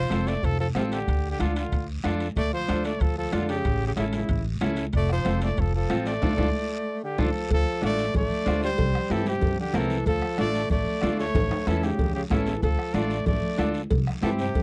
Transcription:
Already playing: F3 C5
0.10 F1 C4 F4 A4, bombo rim, high conga, high timbale, short guiro
0.27 A3 D5, high timbale, short guiro
0.43 F1 F3 A4, bombo low, high timbale, long guiro
0.60 F3 A4
0.75 A1 C3 C4 F4 A4, bombo rim, high conga, high timbale, low timbale, short guiro
0.92 D3 G4, high timbale, short guiro
1.08 D2, bombo low, high timbale, long guiro
1.30 D3 G4
1.39 D2 D3 D4 F4 A4, bombo rim, high conga, high timbale, short guiro
1.55 D3 F4, high timbale, short guiro
1.72 D2, bombo low, high timbale, long guiro
2.04 F2 D4 F4 A4, bombo rim, high conga, high timbale, short guiro
2.20 high timbale, short guiro
2.36 D2 A3 D5, bombo low, high timbale, long guiro
2.53 F3 C5
2.68 D2 D4 F4 A4, bombo rim, high conga, high timbale, short guiro
2.84 A3 D5, high timbale, short guiro
3.00 D2 F3 A4, bombo low, high timbale, long guiro
3.17 F3 A4
3.32 F2 D3 D4 F4 A4, bombo rim, high conga, high timbale, low timbale, short guiro
3.49 C#3 G4, high timbale, short guiro
3.65 A1, bombo low, high timbale, long guiro
3.86 C#3 G4
3.96 A1 C#3 C#4 E4 A4, bombo rim, high conga, high timbale, short guiro
4.13 C#3 E4, high conga, high timbale, short guiro
4.29 A1, bombo low, high timbale, long guiro
4.61 C#2 C#4 E4 A4, bombo rim, high conga, high timbale, low timbale, short guiro
4.76 high timbale, short guiro
4.93 F1 A3 D5, bombo low, high timbale, long guiro
5.09 F3 C5, bombo rim
5.25 F1 C4 F4 A4, bombo rim, high conga, high timbale, short guiro
5.41 A3 D5, high conga, high timbale, short guiro
5.57 F1 F3 A4, bombo low, high timbale, long guiro
5.75 F3 A4
5.90 A1 C4 F4 A4, bombo rim, high conga, high timbale, short guiro
6.06 A3 D5, high timbale, short guiro
6.22 D2 D4 F4 A4, bombo low, high conga, high timbale, long guiro
6.37 D2 D4 F4 A4, bombo low, high conga, high timbale, long guiro
7.04 D3 G4
7.18 D2 F3 D4 F4 A4, bombo low, high conga, high timbale, long guiro
7.50 D2 F3 A4, bombo low, cowbell, long guiro
7.82 A1 A3 D4 F4 A4 D5, bombo rim, high conga, short guiro
7.98 short guiro
8.14 A1 A3 D5, bombo low, cowbell, low conga, long guiro
8.46 D2 D4 F4 C5, bombo rim, high conga, low timbale, short guiro
8.63 G3 C5, short guiro
8.78 C2, bombo low, cowbell, low conga, long guiro
8.95 bombo rim
9.10 G2 E3 C4 E4 G4 A4, bombo rim, high conga, short guiro
9.26 C3 G4, high conga, short guiro
9.41 G2, bombo low, cowbell, low conga, long guiro
9.59 D3 G4
9.74 C2 E3 C4 E4 A4 A#4, bombo rim, high conga, low conga, low timbale, short guiro
9.90 short guiro
10.06 D2 F3 A4, bombo low, cowbell, long guiro
10.22 bombo rim
10.38 A1 A3 D4 F4 A4 D5, bombo rim, high conga, short guiro
10.54 short guiro
10.70 A1 A3 D5, bombo low, cowbell, low conga, long guiro
11.01 D2 D4 F4 A4, bombo rim, high conga, low timbale, short guiro
11.19 A3 C#5, short guiro
11.35 A1, bombo low, cowbell, low conga, high timbale, long guiro
11.51 high timbale
11.67 E2 E3 C#4 E4 A4, bombo rim, high conga, short guiro
11.83 C#3 G4, high conga, high timbale, short guiro
11.99 E2, bombo low, cowbell, low conga, long guiro
12.15 C#3 G4
12.30 A1 E3 C#4 E4 A4, bombo low, bombo rim, high conga, low timbale, short guiro
12.46 low timbale, short guiro
12.62 D2 F3 A4, bombo low, cowbell, long guiro
12.79 bombo rim
12.94 A1 A3 D4 F4 A4 D5, bombo rim, high conga, short guiro
13.10 short guiro
13.26 A1 A3 D5, bombo low, cowbell, low conga, long guiro
13.58 D2 D4 F4 A4, bombo rim, high conga, short guiro
13.74 short guiro
13.90 C2, bombo low, cowbell, low conga, long guiro
14.07 bombo rim
14.22 G2 E3 C4 E4 G4 A4, bombo rim, high conga, short guiro
14.39 C3 G4, short guiro
14.55 G2, bombo low, cowbell, low conga, long guiro

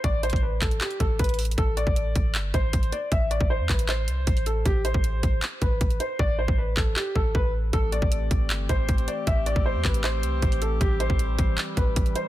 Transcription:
0.04 A1 D5, kick, closed hi-hat
0.23 C5, closed hi-hat
0.30 A1, kick, closed hi-hat
0.36 closed hi-hat
0.43 B4
0.62 A1 A4, kick, clap, closed hi-hat
0.71 closed hi-hat
0.81 G4, clap, closed hi-hat
0.91 closed hi-hat
1.00 A1 A4, kick, closed hi-hat
1.19 A1 B4, kick, closed hi-hat
1.24 closed hi-hat
1.29 closed hi-hat
1.34 closed hi-hat
1.39 closed hi-hat, open hi-hat
1.45 closed hi-hat
1.51 closed hi-hat
1.58 A1 A4, kick, closed hi-hat
1.77 D5, closed hi-hat
1.87 A1, kick
1.96 closed hi-hat
2.16 A1, kick, closed hi-hat
2.35 G1, clap, closed hi-hat
2.54 A1 C5, kick, closed hi-hat
2.73 A1, kick, closed hi-hat
2.83 closed hi-hat
2.92 D5, closed hi-hat
3.12 A1 E5, kick, closed hi-hat
3.31 D5, closed hi-hat
3.41 A1, kick
3.50 C5
3.60 E2
3.69 A1 B4, kick, clap, closed hi-hat
3.79 closed hi-hat
3.89 C5, clap, closed hi-hat
4.08 C2, closed hi-hat
4.27 A1, kick, closed hi-hat
4.37 closed hi-hat
4.46 A4, closed hi-hat
4.66 A1 G4, kick, closed hi-hat
4.85 C5, closed hi-hat
4.94 A1, kick
5.04 closed hi-hat
5.23 A1, kick, closed hi-hat
5.42 clap, closed hi-hat
5.62 A1 B4, kick, closed hi-hat
5.81 A1, kick, closed hi-hat
5.90 closed hi-hat
6.00 C5, closed hi-hat
6.19 A1 D5, kick
6.39 C5
6.48 A1, kick
6.58 B4
6.77 A1 A4, kick, clap
6.96 G4, clap
7.16 A1 A4, kick
7.35 A1 B4, kick
7.73 A1 E3 A3 C4 G4 A4, kick, closed hi-hat
7.92 D5, closed hi-hat
8.02 A1, kick
8.12 closed hi-hat
8.31 A1, kick, closed hi-hat
8.50 G1, clap, closed hi-hat
8.69 A1 C5, kick, closed hi-hat
8.89 A1, kick, closed hi-hat
8.98 closed hi-hat
9.08 D5, closed hi-hat
9.27 A1 E5, kick, closed hi-hat
9.46 D5, closed hi-hat
9.56 A1, kick
9.66 C5
9.75 E2
9.85 A1 B4, kick, clap, closed hi-hat
9.94 closed hi-hat
10.04 C5, clap, closed hi-hat
10.23 C2, closed hi-hat
10.42 A1, kick, closed hi-hat
10.52 closed hi-hat
10.62 A4, closed hi-hat
10.81 A1 G3 G4, kick, closed hi-hat
11.00 C5, closed hi-hat
11.10 A1, kick
11.19 closed hi-hat
11.39 A1, kick, closed hi-hat
11.58 clap, closed hi-hat
11.77 A1 B4, kick, closed hi-hat
11.96 A1, kick, closed hi-hat
12.06 closed hi-hat
12.15 C5, closed hi-hat

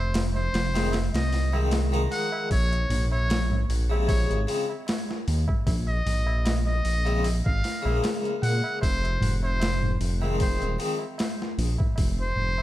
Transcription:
Already playing: F1 C5
0.14 snare, open hi-hat, tabla na
0.35 C5, tabla na
0.53 F1, snare, open hi-hat
0.74 D#3 F3 G#3 C4, snare, open hi-hat, tabla na
0.92 snare, open hi-hat, tabla na
1.14 C2 D#5, snare, open hi-hat, tabla na
1.33 snare, open hi-hat
1.53 D#3 F3 G#3 C4, tabla na
1.71 snare, open hi-hat, tabla na
1.92 D#3 F3 G#3 D#4, closed hi-hat, tabla na
2.12 F#5, open hi-hat
2.32 tabla na
2.50 A#1 C#5, kick, open hi-hat, tabla na
2.71 closed hi-hat, tabla na
2.89 A#1, open hi-hat, tabla ge
3.12 C#5, tabla na
3.29 snare, open hi-hat, tabla na
3.51 tabla na, tabla ge
3.69 A#1, open hi-hat
3.90 C3 C#3 F3 G#3, tabla na
4.08 C#5, kick, open hi-hat, tabla na
4.30 G#1, closed hi-hat, tabla na
4.47 C#3 F3 G#3 C4, open hi-hat
4.70 tabla na
4.87 snare, open hi-hat, tabla na
5.09 snare, tabla na
5.28 D#2, open hi-hat
5.47 kick, tabla na, tabla ge
5.67 A#1, kick, open hi-hat, tabla na
5.88 D#5, tabla na
6.05 A#1, open hi-hat, tabla ge
6.27 tabla na
6.45 snare, open hi-hat, tabla na
6.66 D#5, tabla na
6.85 A#1, open hi-hat
7.05 C#3 F3 G#3 C4, closed hi-hat, tabla na
7.24 open hi-hat, tabla na
7.46 G#1 F5, kick, tabla na
7.64 snare, open hi-hat
7.82 A#1 C#3 F3, tabla na
7.87 G#3 A#3
8.02 snare, open hi-hat, tabla na
8.25 closed hi-hat, tabla na
8.43 A#2 F#5, open hi-hat
8.64 tabla na
8.81 F1 C5, kick, open hi-hat, tabla na
9.04 closed hi-hat, tabla na
9.21 F1, open hi-hat, tabla ge
9.43 C5, tabla na
9.60 snare, open hi-hat, tabla na
9.82 tabla na, tabla ge
10.00 F1, open hi-hat
10.21 D#3 F3 G#3 C4, tabla na
10.39 C5, kick, open hi-hat, tabla na
10.60 D#1, closed hi-hat, tabla na
10.79 D#3 F3 G#3 C4, open hi-hat
10.99 tabla na
11.18 snare, open hi-hat, tabla na
11.38 snare, tabla na
11.58 A#1, open hi-hat
11.78 kick, tabla na, tabla ge
11.96 F1, kick, open hi-hat, tabla na
12.17 C5, tabla na
12.35 F1, tabla ge
12.58 tabla na

